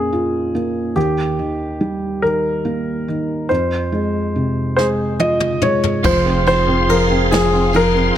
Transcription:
0.00 0.92 F2 medium
0.00 0.55 A#3 soft
0.00 0.92 C#4 soft
0.00 1.00 G#4 medium
0.13 0.94 F4 soft
0.55 0.95 A#3 soft
0.96 3.46 D#2 medium
0.96 2.26 G4 medium
1.39 2.21 D#3 soft
1.81 3.46 G3 soft
2.22 3.07 D#3 soft
2.22 3.53 A#4 medium
2.65 3.47 A#3 soft
3.08 3.49 D#3 soft
3.49 6.01 F2 medium
3.49 4.75 C5 medium
3.92 4.76 G#3 soft
4.36 6.01 C3 soft
4.76 5.60 G#3 soft
4.76 5.69 G#4 medium
4.76 4.86 C5 medium
4.76 snare soft
5.19 6.02 F4 medium
5.19 5.64 D#5 medium
5.19 high tom medium
5.40 mid tom medium
5.62 6.03 G#3 soft
5.62 6.02 C#5 medium
5.62 mid tom medium
5.83 floor tom medium
6.03 8.12 F1 loud
6.03 6.46 F3 medium
6.03 8.18 F3 medium
6.03 8.18 G#4 medium
6.03 6.46 C5 medium
6.03 8.18 F5 medium
6.03 8.18 C6 medium
6.03 kick medium
6.03 crash medium
6.25 6.66 C4 medium
6.47 6.87 F3 medium
6.47 7.31 C4 medium
6.47 6.91 C5 loud
6.47 ride soft
6.67 7.09 C4 medium
6.88 7.30 F3 medium
6.88 7.72 F4 medium
6.88 7.33 A#4 medium
6.88 ride medium
7.10 7.52 C4 medium
7.31 7.73 F3 medium
7.31 8.15 C4 medium
7.31 7.75 G#4 medium
7.31 snare loud
7.31 ride medium
7.53 7.93 C4 medium
7.73 8.15 F3 medium
7.73 8.18 F4 medium
7.73 8.18 A#4 medium
7.73 ride soft
7.95 8.18 C4 medium

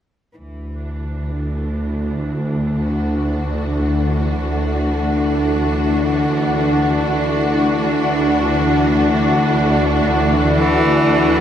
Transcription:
0.38 7.12 D2 medium
0.38 11.40 D3 medium
0.38 11.40 E3 medium
0.38 11.40 D4 medium
0.75 11.40 D4 medium
1.33 11.40 A3 medium
2.76 11.40 F#4 medium
7.16 11.40 D2 medium
10.56 11.39 E3 medium

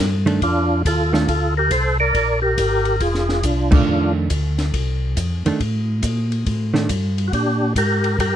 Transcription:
0.00 0.40 G2 medium
0.26 0.40 D#3 medium
0.26 0.40 A3 medium
0.26 0.40 D4 medium
0.26 ride soft
0.42 0.83 F2 medium
0.42 0.83 D4 medium
0.42 0.82 F4 medium
0.42 kick soft
0.42 ride medium
0.85 1.27 D#2 medium
0.85 1.13 F4 medium
0.85 1.13 A4 medium
0.85 kick soft
0.85 hi-hat pedal soft
0.85 ride medium
1.13 1.26 D#3 medium
1.13 1.27 A3 medium
1.13 1.27 D4 medium
1.13 1.27 F4 medium
1.13 1.27 A4 medium
1.13 snare soft
1.28 1.70 D2 medium
1.28 1.55 F4 medium
1.28 1.54 A4 medium
1.28 kick soft
1.28 ride medium
1.57 1.71 G4 medium
1.57 1.72 A#4 loud
1.71 2.13 C2 medium
1.71 1.97 A4 medium
1.71 1.98 C5 medium
1.71 kick soft
1.71 hi-hat pedal soft
1.71 ride medium
2.00 2.40 A#4 medium
2.00 2.40 D5 loud
2.14 2.56 A#1 medium
2.14 kick soft
2.14 ride medium
2.42 2.96 G4 medium
2.42 3.02 A#4 loud
2.58 2.99 G#1 medium
2.58 kick soft
2.58 hi-hat pedal medium
2.58 ride medium
2.85 ride soft
3.00 3.42 F1 medium
3.00 3.41 F4 medium
3.00 3.45 G#4 medium
3.00 kick soft
3.00 ride medium
3.15 snare soft
3.29 snare soft
3.43 3.86 C2 medium
3.43 3.71 D4 medium
3.43 3.71 F4 medium
3.43 kick soft
3.43 hi-hat pedal medium
3.43 ride medium
3.71 4.27 D#3 medium
3.71 4.27 A3 medium
3.71 4.27 D4 medium
3.71 4.13 D4 medium
3.71 4.13 F4 medium
3.71 kick medium
3.71 crash medium
3.87 4.29 F2 medium
4.30 4.72 D2 medium
4.30 kick soft
4.30 hi-hat pedal medium
4.30 ride medium
4.58 snare soft
4.58 ride soft
4.74 5.15 C2 medium
4.74 kick soft
4.74 ride medium
5.17 5.43 F2 medium
5.17 kick soft
5.17 hi-hat pedal medium
5.17 ride medium
5.45 5.52 F2 soft
5.45 5.59 D#3 medium
5.45 5.59 A3 medium
5.45 5.60 D4 medium
5.45 ride medium
5.60 6.02 A2 medium
5.60 kick soft
5.60 ride medium
6.03 6.45 A#2 medium
6.03 kick soft
6.03 hi-hat pedal medium
6.03 ride medium
6.32 ride soft
6.46 6.88 A2 medium
6.46 kick soft
6.46 ride medium
6.74 6.87 D#3 medium
6.74 6.88 A3 medium
6.74 6.88 D4 medium
6.74 snare soft
6.89 7.31 G2 medium
6.89 kick soft
6.89 hi-hat pedal medium
6.89 ride medium
7.18 ride soft
7.28 7.32 F#4 medium
7.33 7.74 A#2 medium
7.33 7.73 D4 medium
7.33 7.74 G4 medium
7.33 kick soft
7.33 ride medium
7.76 8.17 G#2 medium
7.76 8.17 G4 medium
7.76 8.19 A#4 medium
7.76 kick soft
7.76 hi-hat pedal medium
7.76 ride medium
8.04 ride soft
8.19 8.36 G2 medium
8.19 8.36 G4 medium
8.19 8.36 A#4 medium
8.19 kick soft
8.19 ride medium

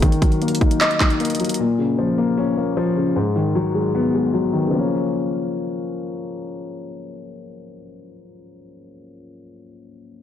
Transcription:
0.02 1.00 D#3 loud
0.02 kick loud
0.02 closed hi-hat medium
0.12 closed hi-hat medium
0.22 1.20 F#3 medium
0.22 kick loud
0.22 closed hi-hat medium
0.32 closed hi-hat soft
0.42 1.19 A#3 medium
0.42 closed hi-hat soft
0.48 closed hi-hat medium
0.55 closed hi-hat medium
0.61 0.99 D#4 medium
0.61 kick medium
0.61 closed hi-hat medium
0.71 closed hi-hat medium
0.81 1.59 D#5 loud
0.81 clap loud
0.81 closed hi-hat medium
0.91 closed hi-hat medium
1.00 1.59 D#4 medium
1.00 kick medium
1.00 clap loud
1.00 closed hi-hat medium
1.10 closed hi-hat medium
1.20 1.59 A#3 medium
1.20 closed hi-hat soft
1.25 closed hi-hat medium
1.30 closed hi-hat medium
1.35 closed hi-hat medium
1.40 1.59 F#3 medium
1.40 closed hi-hat soft
1.45 closed hi-hat medium
1.49 closed hi-hat medium
1.54 closed hi-hat medium
1.59 2.57 A#2 medium
1.79 2.77 C#3 medium
1.98 2.75 F3 medium
2.18 2.56 A#3 medium
2.37 3.16 C#4 loud
2.57 3.16 A#3 medium
2.77 3.16 F3 medium
2.96 3.16 C#3 medium
3.16 4.14 G#2 medium
3.36 4.34 D#3 medium
3.55 4.32 F#3 medium
3.75 4.13 G#3 medium
3.95 4.73 B3 loud
4.14 4.73 G#3 medium
4.34 4.73 F#3 medium
4.53 4.73 D#3 medium
4.67 7.71 C#3 medium
4.71 7.75 F3 medium
4.75 7.79 A#3 medium
4.75 7.83 C#4 medium

